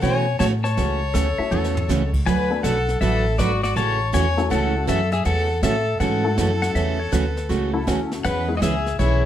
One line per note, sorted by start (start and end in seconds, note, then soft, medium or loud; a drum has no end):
0.01 0.39 B2 medium
0.01 0.24 C#3 medium
0.01 0.24 E3 medium
0.01 0.24 A3 medium
0.01 0.24 C#4 medium
0.01 0.25 F#4 medium
0.01 0.37 C#5 medium
0.01 0.38 C#5 medium
0.01 0.39 G#5 loud
0.01 brush sweep soft
0.01 snare soft
0.39 0.76 A2 loud
0.39 0.51 C#3 medium
0.39 0.51 E3 medium
0.39 0.51 A3 medium
0.39 0.52 C#4 medium
0.39 0.52 F#4 medium
0.39 0.51 C#5 medium
0.39 0.46 C#5 medium
0.39 0.46 A5 loud
0.39 snare medium
0.39 hi-hat pedal medium
0.64 2.10 C#5 medium
0.64 2.09 A5 medium
0.64 snare soft
0.77 1.14 C#2 medium
0.77 0.99 C#3 medium
0.77 0.99 E3 medium
0.77 0.99 A3 medium
0.77 0.99 C#4 medium
0.77 1.00 F#4 medium
0.77 brush sweep medium
0.77 snare soft
1.14 1.37 D2 medium
1.14 1.26 C#3 medium
1.14 1.26 E3 medium
1.14 1.26 A3 medium
1.14 1.27 C#4 medium
1.14 1.26 F#4 medium
1.14 1.38 A4 medium
1.14 snare medium
1.14 hi-hat pedal medium
1.38 1.86 A3 medium
1.38 1.87 C#4 medium
1.38 1.87 E4 medium
1.38 1.87 F#4 medium
1.38 1.87 A4 medium
1.38 1.51 E5 medium
1.38 muted upright bass stroke soft
1.51 1.88 E2 medium
1.51 1.74 C#3 medium
1.51 1.74 E3 medium
1.51 1.74 A3 medium
1.51 1.74 C#4 medium
1.51 1.74 F#4 medium
1.51 1.74 A4 loud
1.51 high tom soft
1.64 snare medium
1.75 2.12 A4 medium
1.75 floor tom medium
1.89 2.25 C#2 medium
1.89 2.01 C#3 medium
1.89 2.01 E3 medium
1.89 2.01 A3 medium
1.89 2.01 C#4 medium
1.89 2.01 F#4 medium
1.89 snare medium
1.89 hi-hat pedal medium
2.14 kick medium
2.14 crash medium
2.26 2.63 D2 medium
2.26 2.49 D3 medium
2.26 2.49 F#3 medium
2.26 2.49 A3 medium
2.26 2.49 D4 medium
2.26 2.49 F#4 medium
2.26 2.61 B4 medium
2.26 2.62 B4 medium
2.26 2.49 B4 medium
2.26 2.61 G#5 loud
2.26 brush sweep medium
2.26 snare soft
2.50 2.62 A3 medium
2.50 2.62 B3 medium
2.50 2.63 D4 medium
2.50 2.63 F#4 medium
2.50 2.63 A4 medium
2.63 3.00 B1 medium
2.63 2.76 D3 medium
2.63 2.76 F#3 medium
2.63 2.76 A3 medium
2.63 2.76 D4 medium
2.63 2.76 F#4 medium
2.63 2.99 A4 medium
2.63 2.76 B4 medium
2.63 3.00 F#5 medium
2.63 snare medium
2.63 hi-hat pedal medium
2.89 snare soft
3.01 3.37 A1 medium
3.01 3.23 D3 medium
3.01 3.24 F#3 medium
3.01 3.24 A3 medium
3.01 3.24 D4 medium
3.01 3.24 F#4 medium
3.01 3.36 A4 medium
3.01 3.24 B4 medium
3.01 3.40 E5 medium
3.01 brush sweep soft
3.01 snare soft
3.38 3.75 G#1 medium
3.38 3.50 D3 medium
3.38 3.50 F#3 medium
3.38 3.50 A3 medium
3.38 3.51 D4 medium
3.38 3.61 F#4 medium
3.38 3.51 F#4 medium
3.38 3.51 B4 medium
3.38 3.62 D5 medium
3.38 snare medium
3.38 hi-hat pedal medium
3.63 3.75 F#4 medium
3.63 3.76 F#4 medium
3.63 3.77 D5 medium
3.63 snare soft
3.76 4.12 A1 medium
3.76 3.98 C#3 medium
3.76 3.98 E3 medium
3.76 3.98 A3 medium
3.76 3.98 C#4 medium
3.76 3.99 F#4 medium
3.76 4.11 C#5 medium
3.76 4.15 A5 loud
3.76 brush sweep soft
3.76 snare soft
4.13 4.50 E2 medium
4.13 4.25 C#3 medium
4.13 4.25 E3 medium
4.13 4.25 A3 medium
4.13 4.25 C#4 medium
4.13 4.25 F#4 medium
4.13 4.48 C#5 medium
4.13 4.48 G#5 loud
4.13 snare medium
4.13 hi-hat pedal medium
4.37 4.85 A3 medium
4.37 4.85 C#4 medium
4.37 4.85 E4 medium
4.37 4.85 F#4 medium
4.37 4.86 A4 medium
4.37 snare soft
4.50 4.87 C#2 medium
4.50 4.72 C#3 medium
4.50 4.73 E3 medium
4.50 4.73 A3 medium
4.50 4.73 C#4 medium
4.50 4.73 F#4 medium
4.50 4.86 A4 medium
4.50 4.88 F#5 medium
4.50 brush sweep soft
4.50 snare soft
4.87 5.24 F#2 medium
4.87 4.99 C#3 medium
4.87 4.99 E3 medium
4.87 5.00 A3 medium
4.87 5.00 C#4 medium
4.87 5.00 F#4 medium
4.87 5.11 A4 medium
4.87 5.11 E5 medium
4.87 snare medium
4.87 hi-hat pedal medium
5.12 5.24 G#4 medium
5.12 5.25 G#4 medium
5.12 5.25 E5 medium
5.12 snare soft
5.24 5.62 E2 medium
5.24 5.47 C#3 medium
5.24 5.47 E3 medium
5.24 5.48 A3 medium
5.24 5.48 C#4 medium
5.24 5.48 F#4 medium
5.24 5.59 A4 medium
5.24 5.61 A4 medium
5.24 5.63 F#5 medium
5.24 brush sweep medium
5.24 snare soft
5.62 5.99 A2 medium
5.62 5.74 C#3 medium
5.62 5.75 E3 medium
5.62 5.75 A3 medium
5.62 5.75 C#4 medium
5.62 5.75 F#4 medium
5.62 5.97 A4 medium
5.62 5.98 A4 medium
5.62 6.00 E5 loud
5.62 snare medium
5.62 hi-hat pedal medium
6.00 6.36 G#2 medium
6.00 6.22 C#3 medium
6.00 6.23 E3 medium
6.00 6.23 A3 medium
6.00 6.23 C#4 medium
6.00 6.23 F#4 medium
6.00 7.83 A4 medium
6.00 7.83 F#5 medium
6.00 brush sweep medium
6.00 snare soft
6.24 6.72 A3 medium
6.24 6.72 C#4 medium
6.24 6.72 E4 medium
6.24 6.72 F#4 medium
6.24 6.72 A4 medium
6.38 6.74 F#2 medium
6.38 6.49 C#3 medium
6.38 6.49 E3 medium
6.38 6.50 A3 medium
6.38 6.50 C#4 medium
6.38 6.50 F#4 medium
6.38 snare medium
6.38 hi-hat pedal medium
6.62 6.75 F#5 medium
6.62 snare soft
6.75 7.11 E2 medium
6.75 6.97 C#3 medium
6.75 6.97 E3 medium
6.75 6.97 A3 medium
6.75 6.98 C#4 medium
6.75 6.98 F#4 medium
6.75 6.98 E5 medium
6.75 brush sweep soft
6.75 snare medium
6.99 7.12 C#5 medium
7.12 7.48 D2 medium
7.12 7.24 C#3 medium
7.12 7.24 E3 medium
7.12 7.24 A3 medium
7.12 7.24 C#4 medium
7.12 7.24 F#4 medium
7.12 7.48 B4 medium
7.12 snare medium
7.12 hi-hat pedal medium
7.37 snare soft
7.49 7.86 C#2 medium
7.49 7.71 C#3 medium
7.49 7.72 E3 medium
7.49 7.72 A3 medium
7.49 7.72 C#4 medium
7.49 7.73 F#4 medium
7.49 7.72 F#4 medium
7.49 brush sweep soft
7.49 snare soft
7.73 8.21 A3 medium
7.73 8.21 C#4 medium
7.73 7.86 E4 medium
7.73 8.21 E4 medium
7.73 8.22 F#4 medium
7.73 8.22 A4 medium
7.87 8.23 D2 medium
7.87 7.99 C#3 medium
7.87 7.99 E3 medium
7.87 7.99 A3 medium
7.87 7.99 C#4 medium
7.87 8.11 C#4 medium
7.87 7.99 F#4 medium
7.87 snare medium
7.87 hi-hat pedal medium
8.11 snare soft
8.24 8.60 E2 medium
8.24 8.46 E3 medium
8.24 8.47 B3 medium
8.24 8.47 C#4 medium
8.24 8.47 G#4 medium
8.24 8.54 B4 medium
8.24 8.55 B4 medium
8.24 8.57 F#5 loud
8.24 brush sweep soft
8.24 snare soft
8.48 8.60 G#3 medium
8.48 8.60 B3 medium
8.48 8.60 C#4 medium
8.48 8.60 E4 medium
8.48 8.60 G#4 medium
8.57 8.60 F#4 medium
8.57 8.62 D#5 medium
8.61 8.97 C#2 medium
8.61 8.73 E3 medium
8.61 8.73 B3 medium
8.61 8.74 C#4 medium
8.61 8.96 G#4 medium
8.61 8.74 G#4 medium
8.61 8.97 G#4 medium
8.61 8.97 E5 medium
8.61 snare medium
8.61 hi-hat pedal medium
8.86 snare soft
8.98 9.26 B1 medium
8.98 9.21 E3 medium
8.98 9.21 B3 medium
8.98 9.21 C#4 medium
8.98 9.26 E4 medium
8.98 9.22 G#4 medium
8.98 9.26 C#5 medium
8.98 brush sweep medium
8.98 snare soft